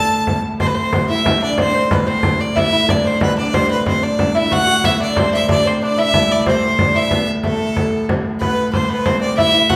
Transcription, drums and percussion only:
0.27 frame drum
0.60 frame drum
0.76 frame drum
0.93 frame drum
1.26 frame drum
1.58 frame drum
1.74 frame drum
1.91 frame drum
2.23 frame drum
2.57 frame drum
2.73 frame drum
2.89 frame drum
3.21 frame drum
3.54 frame drum
3.86 frame drum
4.19 frame drum
4.36 frame drum
4.52 frame drum
4.68 frame drum
4.84 frame drum
5.17 frame drum
5.49 frame drum
5.65 frame drum
6.14 frame drum
6.46 frame drum
6.63 frame drum
6.79 frame drum
7.11 frame drum
7.43 frame drum
7.77 frame drum
8.09 frame drum
8.41 frame drum
8.58 frame drum
8.73 frame drum
8.90 frame drum
9.06 frame drum
9.39 frame drum
9.54 frame drum
9.70 frame drum

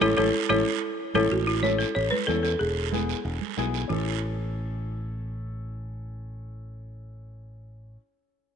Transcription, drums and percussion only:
0.01 high conga, long guiro
0.18 high conga, long guiro
0.50 high conga, long guiro
1.14 high conga, long guiro
1.31 long guiro
1.63 high conga, short guiro
1.80 short guiro
1.96 long guiro
2.12 high conga
2.28 high conga, short guiro
2.45 short guiro
2.61 long guiro
2.93 high conga, short guiro
3.09 short guiro
3.26 long guiro
3.41 high conga
3.58 high conga, short guiro
3.74 short guiro
3.90 low conga, long guiro

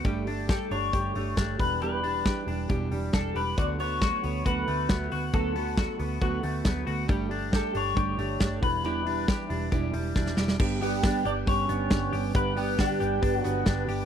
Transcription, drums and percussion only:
0.05 kick, closed hi-hat
0.27 open hi-hat
0.49 kick, snare, closed hi-hat
0.71 open hi-hat
0.93 kick, closed hi-hat
1.15 open hi-hat
1.37 kick, snare, closed hi-hat
1.59 kick, open hi-hat
1.82 closed hi-hat
2.04 open hi-hat
2.26 kick, snare, closed hi-hat
2.48 open hi-hat
2.70 kick, closed hi-hat
2.92 open hi-hat
3.13 kick, snare, closed hi-hat
3.36 open hi-hat
3.58 kick, closed hi-hat
3.80 open hi-hat
4.01 kick, snare, closed hi-hat
4.24 open hi-hat
4.46 kick, closed hi-hat
4.68 open hi-hat
4.89 kick, snare, closed hi-hat
5.12 open hi-hat
5.33 kick, closed hi-hat
5.56 open hi-hat
5.77 kick, snare, closed hi-hat
5.99 open hi-hat
6.21 kick, closed hi-hat
6.43 open hi-hat
6.65 kick, snare, closed hi-hat
6.87 open hi-hat
7.09 kick, closed hi-hat
7.31 open hi-hat
7.53 kick, snare, closed hi-hat
7.75 open hi-hat
7.97 kick, closed hi-hat
8.19 open hi-hat
8.40 kick, snare, closed hi-hat
8.63 kick, open hi-hat
8.85 closed hi-hat
9.07 open hi-hat
9.28 kick, snare, closed hi-hat
9.50 open hi-hat
9.72 kick, closed hi-hat
9.94 open hi-hat
10.15 kick, snare
10.26 snare
10.37 snare
10.48 snare
10.60 kick, crash
10.82 hi-hat pedal, open hi-hat
11.03 kick, snare, hi-hat pedal, open hi-hat
11.25 hi-hat pedal, open hi-hat
11.47 kick, hi-hat pedal, open hi-hat
11.69 hi-hat pedal, open hi-hat
11.91 kick, snare, hi-hat pedal, open hi-hat
12.13 hi-hat pedal, open hi-hat
12.35 kick, hi-hat pedal, open hi-hat
12.57 hi-hat pedal, open hi-hat
12.79 kick, snare, hi-hat pedal, open hi-hat
13.00 hi-hat pedal, open hi-hat
13.22 kick, hi-hat pedal, open hi-hat
13.44 hi-hat pedal, open hi-hat
13.66 kick, snare, hi-hat pedal, open hi-hat
13.88 hi-hat pedal, open hi-hat

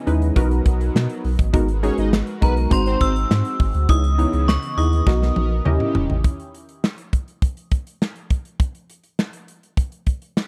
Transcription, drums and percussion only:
0.07 closed hi-hat
0.22 closed hi-hat
0.36 kick, closed hi-hat
0.51 closed hi-hat
0.66 kick, closed hi-hat
0.81 closed hi-hat
0.96 snare, clap
1.09 closed hi-hat
1.24 open hi-hat
1.39 kick, closed hi-hat
1.54 kick, closed hi-hat
1.68 closed hi-hat
1.83 closed hi-hat
1.98 closed hi-hat
2.13 snare, clap
2.27 closed hi-hat
2.42 kick, closed hi-hat
2.57 closed hi-hat
2.71 kick, closed hi-hat
2.86 closed hi-hat
3.00 kick, closed hi-hat
3.16 closed hi-hat
3.31 snare, clap
3.45 closed hi-hat
3.60 kick, open hi-hat
3.74 closed hi-hat
3.89 kick, closed hi-hat
4.04 closed hi-hat
4.19 closed hi-hat
4.33 closed hi-hat
4.49 snare, clap
4.63 closed hi-hat
4.78 closed hi-hat
4.92 closed hi-hat
5.07 kick, snare
5.22 snare
5.36 high tom
5.65 mid tom
5.80 mid tom
5.95 floor tom
6.10 floor tom
6.24 kick, closed hi-hat
6.40 closed hi-hat
6.55 closed hi-hat
6.69 closed hi-hat
6.84 snare, clap
6.98 closed hi-hat
7.13 kick, closed hi-hat
7.28 closed hi-hat
7.42 kick, closed hi-hat
7.57 closed hi-hat
7.71 kick, closed hi-hat
7.87 closed hi-hat
8.02 snare, clap
8.16 closed hi-hat
8.30 kick, closed hi-hat
8.45 closed hi-hat
8.60 kick, closed hi-hat
8.75 closed hi-hat
8.90 closed hi-hat
9.03 closed hi-hat
9.19 snare, clap
9.33 closed hi-hat
9.48 closed hi-hat
9.63 closed hi-hat
9.77 kick, closed hi-hat
9.92 closed hi-hat
10.06 kick, closed hi-hat
10.22 closed hi-hat
10.37 snare, clap

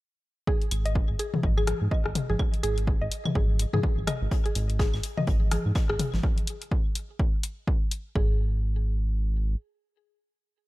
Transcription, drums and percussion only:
0.47 kick
0.62 open hi-hat
0.71 open hi-hat, claves
0.86 open hi-hat
0.95 kick
1.19 open hi-hat
1.34 mid tom, high conga
1.43 kick
1.58 claves
1.67 cross-stick, open hi-hat, high conga
1.91 kick
2.06 cross-stick
2.15 open hi-hat, mid tom
2.30 high conga
2.39 kick, claves
2.54 open hi-hat
2.63 open hi-hat
2.78 open hi-hat
2.87 kick
3.12 open hi-hat
3.25 mid tom, high conga, claves
3.35 kick
3.59 open hi-hat
3.73 mid tom, high conga
3.83 kick
4.07 cross-stick, open hi-hat, mid tom, claves
4.31 kick, closed hi-hat
4.46 open hi-hat
4.55 closed hi-hat, open hi-hat
4.70 open hi-hat
4.79 kick, snare, closed hi-hat
4.94 snare, claves
5.03 closed hi-hat, open hi-hat
5.18 mid tom, high conga
5.27 kick, closed hi-hat
5.51 cross-stick, closed hi-hat, open hi-hat, high conga
5.75 kick, snare, closed hi-hat, claves
5.90 cross-stick
5.99 closed hi-hat, open hi-hat, mid tom
6.14 snare, high conga
6.23 kick
6.38 open hi-hat
6.47 open hi-hat
6.62 open hi-hat
6.71 kick
6.95 open hi-hat
7.19 kick
7.43 open hi-hat
7.67 kick
7.91 open hi-hat
8.15 kick

